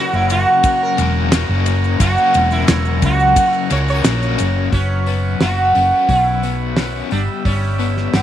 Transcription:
Already playing: overdriven electric guitar F#2 C#3 F#3 A#3 C#4, sitar F#4, transistor combo organ F#5 A#5 C#6
0.13 fingered electric bass F#1, sitar E4, maracas
0.30 sitar F#4, ride, maracas
0.64 kick, ride, maracas
0.83 sitar A#4
0.97 fingered electric bass E1, overdriven electric guitar F#2 C#3 F#3 A#3 C#4, ride, maracas
1.32 overdriven electric guitar F#2 C#3 F#3 A#3 C#4, snare, ride, maracas
1.49 fingered electric bass F#1
1.66 ride, maracas
1.84 maracas
2.00 fingered electric bass F#1, overdriven electric guitar F#2 C#3 F#3 A#3 C#4, sitar F#4, kick, ride, maracas
2.18 maracas
2.34 fingered electric bass E1, ride, maracas
2.51 sitar E4, maracas
2.68 fingered electric bass E1, snare, ride, maracas
2.85 maracas
3.02 fingered electric bass C#2, sitar F#4, kick, ride, maracas
3.20 maracas
3.36 kick, ride, maracas
3.52 sitar E4, maracas
3.70 fingered electric bass C#2, overdriven electric guitar F#2 C#3 F#3 A#3 C#4, sitar C#5, ride, maracas
3.88 sitar C#5, maracas
4.04 fingered electric bass A#1, overdriven electric guitar F#2 C#3 F#3 A#3 C#4, snare, ride, maracas
4.23 maracas
4.38 fingered electric bass F#1, ride, maracas
4.72 fingered electric bass F#1, overdriven electric guitar F#3, sitar C#4, transistor combo organ B4 F#5 C#6, kick, open hi-hat
5.06 overdriven electric guitar B3, open hi-hat
5.40 fingered electric bass F#1, sitar F#4, overdriven electric guitar F#4, snare, open hi-hat
5.75 fingered electric bass F#1, overdriven electric guitar C#4, open hi-hat
6.09 fingered electric bass B1, overdriven electric guitar F#3, sitar E4, kick, open hi-hat
6.43 overdriven electric guitar B3, open hi-hat
6.76 overdriven electric guitar C#4, snare, open hi-hat
7.11 fingered electric bass G1, overdriven electric guitar G3, sitar D4, transistor combo organ G4 E5 B5, open hi-hat
7.45 fingered electric bass G1, overdriven electric guitar G3, sitar C#4, kick, open hi-hat
7.79 overdriven electric guitar B3, open hi-hat
7.97 snare
8.13 fingered electric bass G1, sitar B3, overdriven electric guitar G4, snare, open hi-hat

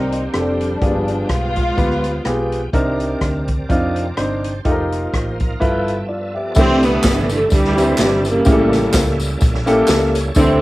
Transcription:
Already playing: fingered electric bass C2, tonewheel organ C3 A#3 C4 G4, string section G3 C4 D#4, grand piano C4 G4 A#4 D5
0.12 closed hi-hat
0.33 fingered electric bass F1, string section F3 G3 D4, grand piano C4 D4 G4 A4, cross-stick, closed hi-hat
0.61 closed hi-hat
0.81 fingered electric bass G1, grand piano G2 A#3 F4 G4 G#4, tonewheel organ F3 B3 G5, kick, closed hi-hat
0.87 grand piano B3
1.08 closed hi-hat
1.29 fingered electric bass B1, string section G#3 B3 F4, kick, cross-stick, closed hi-hat
1.56 kick, closed hi-hat
1.77 fingered electric bass D2, grand piano B3 F4 G4 B4, kick, closed hi-hat
1.91 cross-stick
2.04 closed hi-hat
2.25 fingered electric bass B1, grand piano B3 F4 G4 G#4, cross-stick, closed hi-hat
2.52 closed hi-hat
2.73 fingered electric bass C2, tonewheel organ C3 C4 A4 D5, grand piano C3 C4 D4 D#4 A#4, kick, closed hi-hat
2.78 tonewheel organ A#4
3.00 closed hi-hat
3.21 fingered electric bass D2, kick, cross-stick, closed hi-hat
3.48 kick, closed hi-hat
3.69 fingered electric bass F2, grand piano C4 D4 D#4 F4, kick, closed hi-hat
3.96 closed hi-hat
4.17 fingered electric bass G1, grand piano C4 D4 D#4 C5, tonewheel organ A#4, cross-stick, closed hi-hat
4.44 tonewheel organ C5, closed hi-hat
4.64 fingered electric bass F1, tonewheel organ F3 A#3 D#4 G4, grand piano D#4 F4 G4 A4, kick, closed hi-hat
4.71 grand piano A#4
4.92 tonewheel organ F4, cross-stick, closed hi-hat
5.12 fingered electric bass A1, tonewheel organ C5, kick, cross-stick, closed hi-hat
5.40 tonewheel organ A#4 F5, kick, closed hi-hat
5.60 fingered electric bass G1, grand piano G2 E4 F4 A4 B4, tonewheel organ F3 A#3 A4 E5 G5, kick, closed hi-hat
5.66 tonewheel organ B3
5.87 tonewheel organ G5, closed hi-hat
6.09 grand piano F4 D5, tonewheel organ E5
6.34 grand piano G4 E5, tonewheel organ D5
6.55 fingered electric bass C2, grand piano C3 A3 D4 E4 G4 A4, tonewheel organ C3 G3 D4 E4 G#4, string section E3 A3 C4, kick, crash, tambourine
6.62 tonewheel organ A4
6.83 string section D3 E3 B3, closed hi-hat, tambourine
7.03 fingered electric bass G1, kick, snare, clap, closed hi-hat, tambourine
7.29 string section A3, closed hi-hat, tambourine
7.50 fingered electric bass D2, string section D3 E3 G3, kick, closed hi-hat, tambourine
7.64 snare
7.77 grand piano C4 D4 E4 G4 B4, closed hi-hat, tambourine
7.83 grand piano C5
7.97 fingered electric bass G1, string section G3, snare, clap, closed hi-hat, tambourine
8.25 string section C#3 G3 A#3, closed hi-hat, tambourine
8.45 fingered electric bass A1, grand piano A2 A#3 C#4 E4 G4 G#4, tonewheel organ G3 A#3 C#4 E4 G4, kick, closed hi-hat, tambourine
8.51 tonewheel organ A4, grand piano A4
8.73 snare, closed hi-hat, tambourine
8.93 fingered electric bass C#2, kick, snare, clap, closed hi-hat, tambourine
9.20 closed hi-hat, tambourine
9.41 fingered electric bass A#1, kick, closed hi-hat, tambourine
9.54 snare
9.66 grand piano A#3 C#4 E4 G4 A4, tonewheel organ G5, closed hi-hat, tambourine
9.87 fingered electric bass C#2, tonewheel organ E5, snare, clap, closed hi-hat, tambourine
10.15 tonewheel organ C#5, closed hi-hat, tambourine
10.35 fingered electric bass D2, tonewheel organ C3 E3 D4 E4 G#4, grand piano C3 D3 D4 E4 A4, string section E3 A3 C4, kick, closed hi-hat, tambourine
10.41 tonewheel organ A4

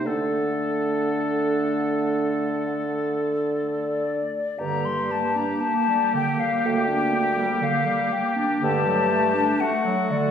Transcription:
0.05 bassoon D3, french horn A3, clarinet D4, oboe A4, flute F#5
3.48 flute D5
4.59 bassoon G2, clarinet D3, french horn A#3, oboe G4, flute A#5
4.85 clarinet G3, flute C6
5.11 clarinet A#3, flute A5
5.36 clarinet D4, flute A#5
5.61 clarinet A#3, flute A5
5.88 clarinet G3
6.14 clarinet D3, flute G5
6.38 clarinet G3, flute F5
6.64 bassoon D2, clarinet A#3, flute G5
6.88 clarinet D4
7.12 clarinet A#3
7.37 clarinet G3
7.62 clarinet D3, flute F5
7.86 clarinet G3
8.10 clarinet A#3, flute G5
8.36 clarinet D4
8.61 bassoon G2, clarinet D3, flute A5
8.65 french horn A3
8.86 clarinet F#3
9.10 clarinet A3
9.34 clarinet D4
9.60 clarinet A3, oboe F#4, flute F#5
9.84 clarinet F#3
10.10 clarinet D3, flute D5

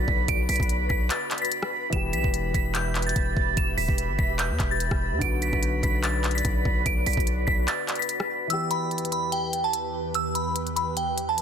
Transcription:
Already playing: grand piano D3 B3 F#4, ambient pad F#4 B4 D5 B5, synth bell B6
0.08 808-style bass B1, kick
0.28 808-style bass B1, synth bell D7, kick, closed hi-hat
0.49 808-style bass B1, synth bell B6, closed hi-hat, open hi-hat
0.56 closed hi-hat
0.60 808-style bass B1, kick, closed hi-hat
0.69 closed hi-hat
0.89 808-style bass B1, synth bell B6, kick
1.10 synth bell A6, clap, closed hi-hat
1.31 clap, closed hi-hat
1.38 synth bell B6, closed hi-hat
1.45 closed hi-hat
1.52 closed hi-hat
1.63 cross-stick
1.90 808-style bass E1, grand piano E3 B3, ambient pad G4 E5, synth bell E7, kick, closed hi-hat
1.95 grand piano G4
2.13 808-style bass B1, synth bell B6, closed hi-hat
2.24 808-style bass E1, kick
2.34 closed hi-hat
2.54 808-style bass E1, synth bell B6, kick, closed hi-hat
2.75 synth bell G6, clap, closed hi-hat
2.95 clap, closed hi-hat
3.02 closed hi-hat
3.07 synth bell A6, closed hi-hat
3.16 808-style bass E1, kick, closed hi-hat
3.37 808-style bass E1, kick
3.57 808-style bass E1, synth bell E7, kick, closed hi-hat
3.77 808-style bass D1, synth bell B6, open hi-hat
3.89 808-style bass E1, kick
3.98 closed hi-hat
4.09 808-style bass G1
4.19 808-style bass E1, synth bell B6, kick
4.39 synth bell G6, clap, closed hi-hat
4.50 808-style bass E2
4.60 808-style bass E1, kick, cross-stick, clap, closed hi-hat
4.71 synth bell A6
4.80 closed hi-hat
4.91 808-style bass E1, kick, cross-stick
5.12 808-style bass E2
5.19 808-style bass B1, grand piano D3 B3, ambient pad F#4 B4 D5, synth bell D7, kick, closed hi-hat
5.24 grand piano F#4
5.42 synth bell B6, closed hi-hat
5.53 808-style bass B1, kick
5.63 closed hi-hat
5.83 808-style bass B1, synth bell B6, kick, closed hi-hat
6.04 synth bell A6, clap, closed hi-hat
6.24 clap, closed hi-hat
6.31 closed hi-hat
6.35 synth bell B6, closed hi-hat
6.45 808-style bass B1, kick, closed hi-hat
6.65 808-style bass B1, kick
6.86 808-style bass B1, synth bell D7, kick, closed hi-hat
7.06 808-style bass B1, synth bell B6, closed hi-hat, open hi-hat
7.13 closed hi-hat
7.17 808-style bass B1, kick, closed hi-hat
7.27 closed hi-hat
7.47 808-style bass B1, synth bell B6, kick
7.68 synth bell A6, clap, closed hi-hat
7.88 clap, closed hi-hat
7.95 synth bell B6, closed hi-hat
8.02 closed hi-hat
8.09 closed hi-hat
8.20 cross-stick
8.47 ambient pad E2 E3 G4 B4, grand piano E3 B3, synth bell E6, closed hi-hat
8.53 grand piano G4
8.71 synth bell B5, closed hi-hat
8.91 closed hi-hat
8.98 closed hi-hat
9.05 closed hi-hat
9.12 synth bell B5, closed hi-hat
9.32 synth bell G5, closed hi-hat
9.53 closed hi-hat
9.64 synth bell A5
9.73 closed hi-hat
10.14 synth bell E6, closed hi-hat
10.35 synth bell B5, closed hi-hat
10.56 closed hi-hat
10.67 closed hi-hat
10.76 synth bell B5, closed hi-hat
10.97 synth bell G5, closed hi-hat
11.18 closed hi-hat
11.29 synth bell A5
11.38 closed hi-hat

